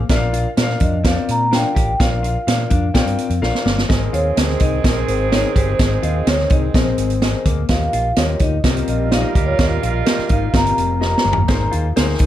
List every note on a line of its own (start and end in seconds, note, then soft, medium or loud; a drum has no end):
0.09 0.45 A#1 loud
0.09 0.46 D4 loud
0.09 0.46 F4 medium
0.09 0.46 A#4 medium
0.09 0.15 E5 medium
0.09 kick loud
0.09 snare medium
0.09 closed hi-hat medium
0.15 0.48 F5 loud
0.33 0.51 F4 medium
0.33 closed hi-hat medium
0.57 0.75 A#2 loud
0.57 0.93 D4 medium
0.57 0.93 F4 medium
0.57 0.93 A#4 medium
0.57 0.63 E5 medium
0.57 snare loud
0.57 closed hi-hat medium
0.63 0.96 F5 loud
0.69 snare soft
0.80 1.17 F2 medium
0.80 0.98 D4 medium
0.80 1.04 D#5 medium
0.80 kick medium
0.80 closed hi-hat medium
1.04 1.49 C4 medium
1.04 1.41 D4 medium
1.04 1.41 F4 medium
1.04 1.41 A#4 medium
1.04 1.10 C5 medium
1.04 1.30 F5 medium
1.04 kick medium
1.04 snare loud
1.04 closed hi-hat medium
1.10 1.43 D5 medium
1.28 1.64 A#2 medium
1.28 1.52 A#5 loud
1.28 closed hi-hat medium
1.51 1.58 C#4 medium
1.51 1.69 D4 medium
1.51 1.88 F4 medium
1.51 1.88 A#4 medium
1.51 1.88 F5 medium
1.51 1.97 G5 medium
1.51 snare loud
1.51 closed hi-hat medium
1.58 1.91 D4 medium
1.75 1.94 A1 medium
1.75 1.93 G4 medium
1.75 kick medium
1.75 closed hi-hat medium
2.00 2.36 A#1 loud
2.00 2.36 D4 medium
2.00 2.36 F4 medium
2.00 2.36 A#4 medium
2.00 2.36 F5 medium
2.00 3.39 F5 medium
2.00 kick loud
2.00 snare loud
2.00 closed hi-hat medium
2.23 2.41 F4 medium
2.23 closed hi-hat medium
2.47 2.65 A#2 loud
2.47 2.83 D4 medium
2.47 2.83 F4 medium
2.47 2.83 A#4 medium
2.47 2.83 F5 medium
2.47 snare loud
2.47 closed hi-hat medium
2.70 2.89 F2 medium
2.70 2.88 D4 medium
2.70 kick medium
2.70 closed hi-hat medium
2.94 3.04 A#2 medium
2.94 3.39 C4 medium
2.94 3.31 D4 medium
2.94 3.31 F4 medium
2.94 3.31 A#4 medium
2.94 3.31 G5 loud
2.94 kick medium
2.94 snare loud
2.94 closed hi-hat medium
3.06 3.15 G2 medium
3.06 closed hi-hat medium
3.18 closed hi-hat medium
3.30 3.39 F2 medium
3.30 closed hi-hat medium
3.41 3.51 A#1 medium
3.41 3.78 D4 medium
3.41 3.78 F4 medium
3.41 3.78 A#4 medium
3.41 3.78 F5 loud
3.41 snare medium
3.55 snare medium
3.65 3.83 G1 medium
3.65 3.83 A#3 medium
3.65 snare medium
3.78 snare medium
3.89 4.08 G#1 loud
3.89 7.42 D#3 medium
3.89 4.25 C4 medium
3.89 7.42 C4 medium
3.89 4.25 G#4 medium
3.89 7.42 G#4 medium
3.89 4.25 A#4 medium
3.89 4.25 D#5 medium
3.89 kick medium
3.89 snare medium
3.89 closed hi-hat medium
4.13 4.31 D#2 medium
4.13 4.31 F4 medium
4.13 4.36 C#5 medium
4.13 closed hi-hat medium
4.36 4.55 D2 medium
4.36 4.73 C4 medium
4.36 4.73 G#4 medium
4.36 4.73 A#4 medium
4.36 4.62 C5 medium
4.36 4.73 D#5 medium
4.36 snare loud
4.36 closed hi-hat medium
4.50 snare soft
4.60 4.79 C2 medium
4.60 4.78 D#4 medium
4.60 4.85 D#5 medium
4.60 kick medium
4.60 closed hi-hat medium
4.84 5.02 A#1 medium
4.84 5.20 C4 medium
4.84 5.29 C4 medium
4.84 5.20 G#4 medium
4.84 5.09 A#4 medium
4.84 5.20 A#4 medium
4.84 5.20 D#5 medium
4.84 kick loud
4.84 snare loud
4.84 closed hi-hat medium
5.08 5.44 G#1 medium
5.08 5.30 C5 medium
5.08 closed hi-hat medium
5.32 5.68 C4 medium
5.32 5.50 D#4 medium
5.32 5.68 G#4 medium
5.32 5.68 A#4 medium
5.32 5.57 C#5 loud
5.32 5.68 D#5 medium
5.32 snare loud
5.32 closed hi-hat medium
5.55 5.74 G1 medium
5.55 5.73 G4 medium
5.55 6.00 C5 loud
5.55 kick medium
5.55 closed hi-hat medium
5.79 5.97 G#1 loud
5.79 6.15 C4 medium
5.79 6.15 G#4 medium
5.79 6.15 A#4 medium
5.79 6.15 D#5 medium
5.79 kick medium
5.79 snare loud
5.79 closed hi-hat medium
6.03 6.21 D#2 medium
6.03 6.21 F4 medium
6.03 6.28 D#5 loud
6.03 closed hi-hat medium
6.27 6.45 D2 loud
6.27 6.63 C4 medium
6.27 6.63 G#4 medium
6.27 6.63 A#4 medium
6.27 6.52 C#5 medium
6.27 6.63 D#5 medium
6.27 snare loud
6.27 closed hi-hat medium
6.39 snare soft
6.50 6.69 C2 medium
6.50 6.68 D#4 medium
6.50 6.73 D#5 medium
6.50 kick medium
6.50 closed hi-hat medium
6.74 6.92 A#1 loud
6.74 7.19 C4 medium
6.74 7.11 C4 medium
6.74 7.10 G#4 medium
6.74 7.11 A#4 medium
6.74 7.42 C5 medium
6.74 7.11 D#5 medium
6.74 kick loud
6.74 snare loud
6.74 closed hi-hat medium
6.98 7.34 G#1 medium
6.98 closed hi-hat medium
7.10 closed hi-hat soft
7.22 7.58 C4 medium
7.22 7.58 G#4 medium
7.22 7.58 A#4 medium
7.22 7.58 D#5 medium
7.22 snare loud
7.22 closed hi-hat medium
7.45 7.64 D2 medium
7.45 7.64 A#3 medium
7.45 kick medium
7.45 closed hi-hat medium
7.69 7.87 D#2 loud
7.69 8.06 A#3 medium
7.69 8.06 F4 medium
7.69 8.06 G4 medium
7.69 8.06 D#5 medium
7.69 8.19 F5 loud
7.69 kick medium
7.69 snare loud
7.69 closed hi-hat medium
7.93 8.11 A#1 medium
7.93 8.11 F4 medium
7.93 closed hi-hat medium
8.16 8.35 D#2 loud
8.16 8.53 A#3 medium
8.16 8.53 F4 medium
8.16 8.53 G4 medium
8.16 8.39 C#5 medium
8.16 8.53 D#5 medium
8.16 snare loud
8.16 closed hi-hat medium
8.39 8.58 D2 medium
8.39 8.58 D#4 medium
8.39 8.63 D#5 medium
8.39 kick medium
8.39 closed hi-hat medium
8.63 8.82 C2 medium
8.63 11.21 G3 medium
8.63 9.00 A#3 medium
8.63 9.09 C4 medium
8.63 11.21 F4 medium
8.63 9.00 F4 medium
8.63 9.00 G4 medium
8.63 11.21 A#4 loud
8.63 9.00 D#5 medium
8.63 kick medium
8.63 snare loud
8.63 closed hi-hat medium
8.77 closed hi-hat soft
8.88 9.24 A#1 medium
8.88 9.13 D#5 medium
8.88 closed hi-hat medium
9.11 9.48 A#3 medium
9.11 9.30 D#4 medium
9.11 9.47 F4 medium
9.11 9.48 G4 medium
9.11 9.17 D5 medium
9.11 9.20 F5 medium
9.11 snare loud
9.11 closed hi-hat medium
9.17 9.50 D#5 medium
9.30 9.45 D#5 medium
9.35 9.53 D2 medium
9.35 9.53 G4 medium
9.35 kick medium
9.35 closed hi-hat medium
9.46 9.61 C#5 medium
9.59 9.77 D#2 loud
9.59 9.95 A#3 medium
9.59 9.95 F4 medium
9.59 9.95 G4 medium
9.59 9.95 F5 medium
9.59 kick loud
9.59 snare loud
9.59 closed hi-hat medium
9.83 10.01 A#1 medium
9.83 10.01 F4 medium
9.83 closed hi-hat medium
10.06 10.42 A#3 medium
10.06 10.42 F4 medium
10.06 10.42 G4 medium
10.06 10.42 C5 medium
10.06 snare loud
10.06 closed hi-hat medium
10.19 muted fingered electric bass stroke soft
10.19 snare soft
10.29 10.48 G#1 medium
10.29 10.48 D#4 medium
10.29 10.56 F5 medium
10.29 kick medium
10.29 closed hi-hat medium
10.53 10.72 G1 medium
10.53 10.90 A#3 medium
10.53 10.99 C4 medium
10.53 10.90 F4 medium
10.53 10.90 G4 medium
10.53 10.90 D#5 medium
10.53 11.70 A#5 loud
10.53 kick loud
10.53 snare loud
10.53 closed hi-hat medium
10.66 closed hi-hat soft
10.78 11.14 F1 medium
10.78 closed hi-hat medium
11.01 11.37 A#3 medium
11.01 11.37 F4 medium
11.01 11.37 G4 medium
11.01 11.37 D#5 medium
11.01 snare medium
11.18 snare medium
11.24 11.43 G1 medium
11.24 11.43 A#3 medium
11.33 floor tom loud
11.48 11.67 G#1 loud
11.48 11.85 A#3 medium
11.48 11.85 D#4 medium
11.48 11.85 G#4 medium
11.48 11.85 C5 medium
11.48 kick loud
11.48 snare loud
11.48 closed hi-hat medium
11.72 11.91 D#2 medium
11.72 11.90 F4 medium
11.72 closed hi-hat medium
11.96 12.15 D2 loud
11.96 12.26 A#3 medium
11.96 12.26 D#4 medium
11.96 12.26 G#4 medium
11.96 12.26 C5 loud
11.96 snare loud
11.96 closed hi-hat medium
12.08 snare soft
12.19 12.26 C2 medium
12.19 12.26 D#4 medium
12.19 kick medium
12.19 closed hi-hat medium